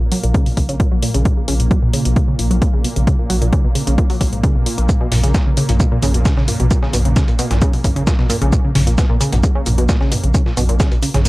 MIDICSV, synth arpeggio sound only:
0, 0, Header, 1, 2, 480
1, 0, Start_track
1, 0, Tempo, 454545
1, 1323, Time_signature, 4, 2, 24, 8
1, 11920, End_track
2, 0, Start_track
2, 0, Title_t, "Synth arpeggio sound"
2, 0, Program_c, 0, 84
2, 8, Note_on_c, 0, 46, 76
2, 76, Note_off_c, 0, 46, 0
2, 124, Note_on_c, 0, 54, 105
2, 197, Note_off_c, 0, 54, 0
2, 248, Note_on_c, 0, 46, 100
2, 316, Note_off_c, 0, 46, 0
2, 363, Note_on_c, 0, 49, 103
2, 474, Note_off_c, 0, 49, 0
2, 488, Note_on_c, 0, 47, 75
2, 529, Note_off_c, 0, 47, 0
2, 603, Note_on_c, 0, 49, 79
2, 677, Note_off_c, 0, 49, 0
2, 728, Note_on_c, 0, 49, 99
2, 796, Note_off_c, 0, 49, 0
2, 843, Note_on_c, 0, 46, 84
2, 917, Note_off_c, 0, 46, 0
2, 968, Note_on_c, 0, 54, 96
2, 1036, Note_off_c, 0, 54, 0
2, 1083, Note_on_c, 0, 46, 100
2, 1157, Note_off_c, 0, 46, 0
2, 1207, Note_on_c, 0, 49, 99
2, 1310, Note_off_c, 0, 49, 0
2, 1323, Note_on_c, 0, 47, 84
2, 1368, Note_off_c, 0, 47, 0
2, 1448, Note_on_c, 0, 49, 78
2, 1517, Note_off_c, 0, 49, 0
2, 1563, Note_on_c, 0, 49, 103
2, 1637, Note_off_c, 0, 49, 0
2, 1688, Note_on_c, 0, 46, 77
2, 1756, Note_off_c, 0, 46, 0
2, 1803, Note_on_c, 0, 54, 102
2, 1877, Note_off_c, 0, 54, 0
2, 1928, Note_on_c, 0, 46, 101
2, 1996, Note_off_c, 0, 46, 0
2, 2043, Note_on_c, 0, 49, 103
2, 2154, Note_off_c, 0, 49, 0
2, 2167, Note_on_c, 0, 47, 76
2, 2209, Note_off_c, 0, 47, 0
2, 2283, Note_on_c, 0, 49, 83
2, 2357, Note_off_c, 0, 49, 0
2, 2407, Note_on_c, 0, 49, 100
2, 2476, Note_off_c, 0, 49, 0
2, 2523, Note_on_c, 0, 46, 78
2, 2597, Note_off_c, 0, 46, 0
2, 2647, Note_on_c, 0, 54, 102
2, 2716, Note_off_c, 0, 54, 0
2, 2763, Note_on_c, 0, 46, 106
2, 2837, Note_off_c, 0, 46, 0
2, 2887, Note_on_c, 0, 49, 101
2, 2990, Note_off_c, 0, 49, 0
2, 3003, Note_on_c, 0, 47, 74
2, 3047, Note_off_c, 0, 47, 0
2, 3127, Note_on_c, 0, 49, 75
2, 3196, Note_off_c, 0, 49, 0
2, 3242, Note_on_c, 0, 49, 106
2, 3317, Note_off_c, 0, 49, 0
2, 3367, Note_on_c, 0, 46, 76
2, 3436, Note_off_c, 0, 46, 0
2, 3481, Note_on_c, 0, 54, 104
2, 3556, Note_off_c, 0, 54, 0
2, 3607, Note_on_c, 0, 46, 105
2, 3676, Note_off_c, 0, 46, 0
2, 3722, Note_on_c, 0, 49, 105
2, 3834, Note_off_c, 0, 49, 0
2, 3846, Note_on_c, 0, 47, 78
2, 3888, Note_off_c, 0, 47, 0
2, 3962, Note_on_c, 0, 49, 79
2, 4037, Note_off_c, 0, 49, 0
2, 4088, Note_on_c, 0, 49, 102
2, 4156, Note_off_c, 0, 49, 0
2, 4203, Note_on_c, 0, 46, 84
2, 4277, Note_off_c, 0, 46, 0
2, 4328, Note_on_c, 0, 54, 101
2, 4396, Note_off_c, 0, 54, 0
2, 4442, Note_on_c, 0, 54, 75
2, 4554, Note_off_c, 0, 54, 0
2, 4568, Note_on_c, 0, 44, 74
2, 4671, Note_off_c, 0, 44, 0
2, 4684, Note_on_c, 0, 49, 103
2, 4794, Note_off_c, 0, 49, 0
2, 4808, Note_on_c, 0, 47, 75
2, 4910, Note_off_c, 0, 47, 0
2, 4923, Note_on_c, 0, 46, 76
2, 5034, Note_off_c, 0, 46, 0
2, 5048, Note_on_c, 0, 58, 74
2, 5089, Note_off_c, 0, 58, 0
2, 5163, Note_on_c, 0, 46, 84
2, 5237, Note_off_c, 0, 46, 0
2, 5287, Note_on_c, 0, 47, 105
2, 5356, Note_off_c, 0, 47, 0
2, 5403, Note_on_c, 0, 46, 109
2, 5477, Note_off_c, 0, 46, 0
2, 5528, Note_on_c, 0, 49, 102
2, 5630, Note_off_c, 0, 49, 0
2, 5644, Note_on_c, 0, 47, 85
2, 5688, Note_off_c, 0, 47, 0
2, 5768, Note_on_c, 0, 49, 75
2, 5836, Note_off_c, 0, 49, 0
2, 5884, Note_on_c, 0, 49, 103
2, 5957, Note_off_c, 0, 49, 0
2, 6009, Note_on_c, 0, 46, 79
2, 6077, Note_off_c, 0, 46, 0
2, 6124, Note_on_c, 0, 47, 102
2, 6198, Note_off_c, 0, 47, 0
2, 6248, Note_on_c, 0, 46, 103
2, 6317, Note_off_c, 0, 46, 0
2, 6364, Note_on_c, 0, 49, 104
2, 6474, Note_off_c, 0, 49, 0
2, 6489, Note_on_c, 0, 47, 75
2, 6529, Note_off_c, 0, 47, 0
2, 6603, Note_on_c, 0, 49, 86
2, 6677, Note_off_c, 0, 49, 0
2, 6728, Note_on_c, 0, 49, 101
2, 6796, Note_off_c, 0, 49, 0
2, 6843, Note_on_c, 0, 46, 75
2, 6917, Note_off_c, 0, 46, 0
2, 6969, Note_on_c, 0, 47, 98
2, 7037, Note_off_c, 0, 47, 0
2, 7083, Note_on_c, 0, 46, 105
2, 7157, Note_off_c, 0, 46, 0
2, 7208, Note_on_c, 0, 49, 103
2, 7310, Note_off_c, 0, 49, 0
2, 7323, Note_on_c, 0, 47, 82
2, 7368, Note_off_c, 0, 47, 0
2, 7447, Note_on_c, 0, 49, 80
2, 7516, Note_off_c, 0, 49, 0
2, 7561, Note_on_c, 0, 49, 105
2, 7636, Note_off_c, 0, 49, 0
2, 7688, Note_on_c, 0, 46, 74
2, 7756, Note_off_c, 0, 46, 0
2, 7802, Note_on_c, 0, 47, 107
2, 7877, Note_off_c, 0, 47, 0
2, 7927, Note_on_c, 0, 46, 103
2, 7996, Note_off_c, 0, 46, 0
2, 8043, Note_on_c, 0, 49, 104
2, 8154, Note_off_c, 0, 49, 0
2, 8168, Note_on_c, 0, 47, 75
2, 8209, Note_off_c, 0, 47, 0
2, 8283, Note_on_c, 0, 49, 78
2, 8357, Note_off_c, 0, 49, 0
2, 8407, Note_on_c, 0, 49, 101
2, 8476, Note_off_c, 0, 49, 0
2, 8522, Note_on_c, 0, 46, 89
2, 8596, Note_off_c, 0, 46, 0
2, 8646, Note_on_c, 0, 47, 102
2, 8716, Note_off_c, 0, 47, 0
2, 8762, Note_on_c, 0, 46, 102
2, 8836, Note_off_c, 0, 46, 0
2, 8887, Note_on_c, 0, 49, 99
2, 8990, Note_off_c, 0, 49, 0
2, 9002, Note_on_c, 0, 47, 86
2, 9047, Note_off_c, 0, 47, 0
2, 9128, Note_on_c, 0, 49, 79
2, 9197, Note_off_c, 0, 49, 0
2, 9242, Note_on_c, 0, 49, 107
2, 9317, Note_off_c, 0, 49, 0
2, 9367, Note_on_c, 0, 46, 81
2, 9436, Note_off_c, 0, 46, 0
2, 9483, Note_on_c, 0, 47, 104
2, 9557, Note_off_c, 0, 47, 0
2, 9607, Note_on_c, 0, 46, 101
2, 9676, Note_off_c, 0, 46, 0
2, 9722, Note_on_c, 0, 49, 105
2, 9834, Note_off_c, 0, 49, 0
2, 9847, Note_on_c, 0, 47, 79
2, 9889, Note_off_c, 0, 47, 0
2, 9963, Note_on_c, 0, 49, 84
2, 10037, Note_off_c, 0, 49, 0
2, 10087, Note_on_c, 0, 49, 106
2, 10156, Note_off_c, 0, 49, 0
2, 10203, Note_on_c, 0, 46, 76
2, 10277, Note_off_c, 0, 46, 0
2, 10327, Note_on_c, 0, 47, 100
2, 10396, Note_off_c, 0, 47, 0
2, 10443, Note_on_c, 0, 46, 104
2, 10517, Note_off_c, 0, 46, 0
2, 10567, Note_on_c, 0, 49, 105
2, 10670, Note_off_c, 0, 49, 0
2, 10683, Note_on_c, 0, 47, 75
2, 10727, Note_off_c, 0, 47, 0
2, 10808, Note_on_c, 0, 49, 74
2, 10876, Note_off_c, 0, 49, 0
2, 10923, Note_on_c, 0, 49, 103
2, 10997, Note_off_c, 0, 49, 0
2, 11048, Note_on_c, 0, 46, 80
2, 11116, Note_off_c, 0, 46, 0
2, 11164, Note_on_c, 0, 47, 107
2, 11237, Note_off_c, 0, 47, 0
2, 11288, Note_on_c, 0, 46, 102
2, 11356, Note_off_c, 0, 46, 0
2, 11403, Note_on_c, 0, 49, 101
2, 11514, Note_off_c, 0, 49, 0
2, 11528, Note_on_c, 0, 47, 80
2, 11569, Note_off_c, 0, 47, 0
2, 11643, Note_on_c, 0, 49, 80
2, 11717, Note_off_c, 0, 49, 0
2, 11768, Note_on_c, 0, 49, 105
2, 11836, Note_off_c, 0, 49, 0
2, 11883, Note_on_c, 0, 46, 83
2, 11920, Note_off_c, 0, 46, 0
2, 11920, End_track
0, 0, End_of_file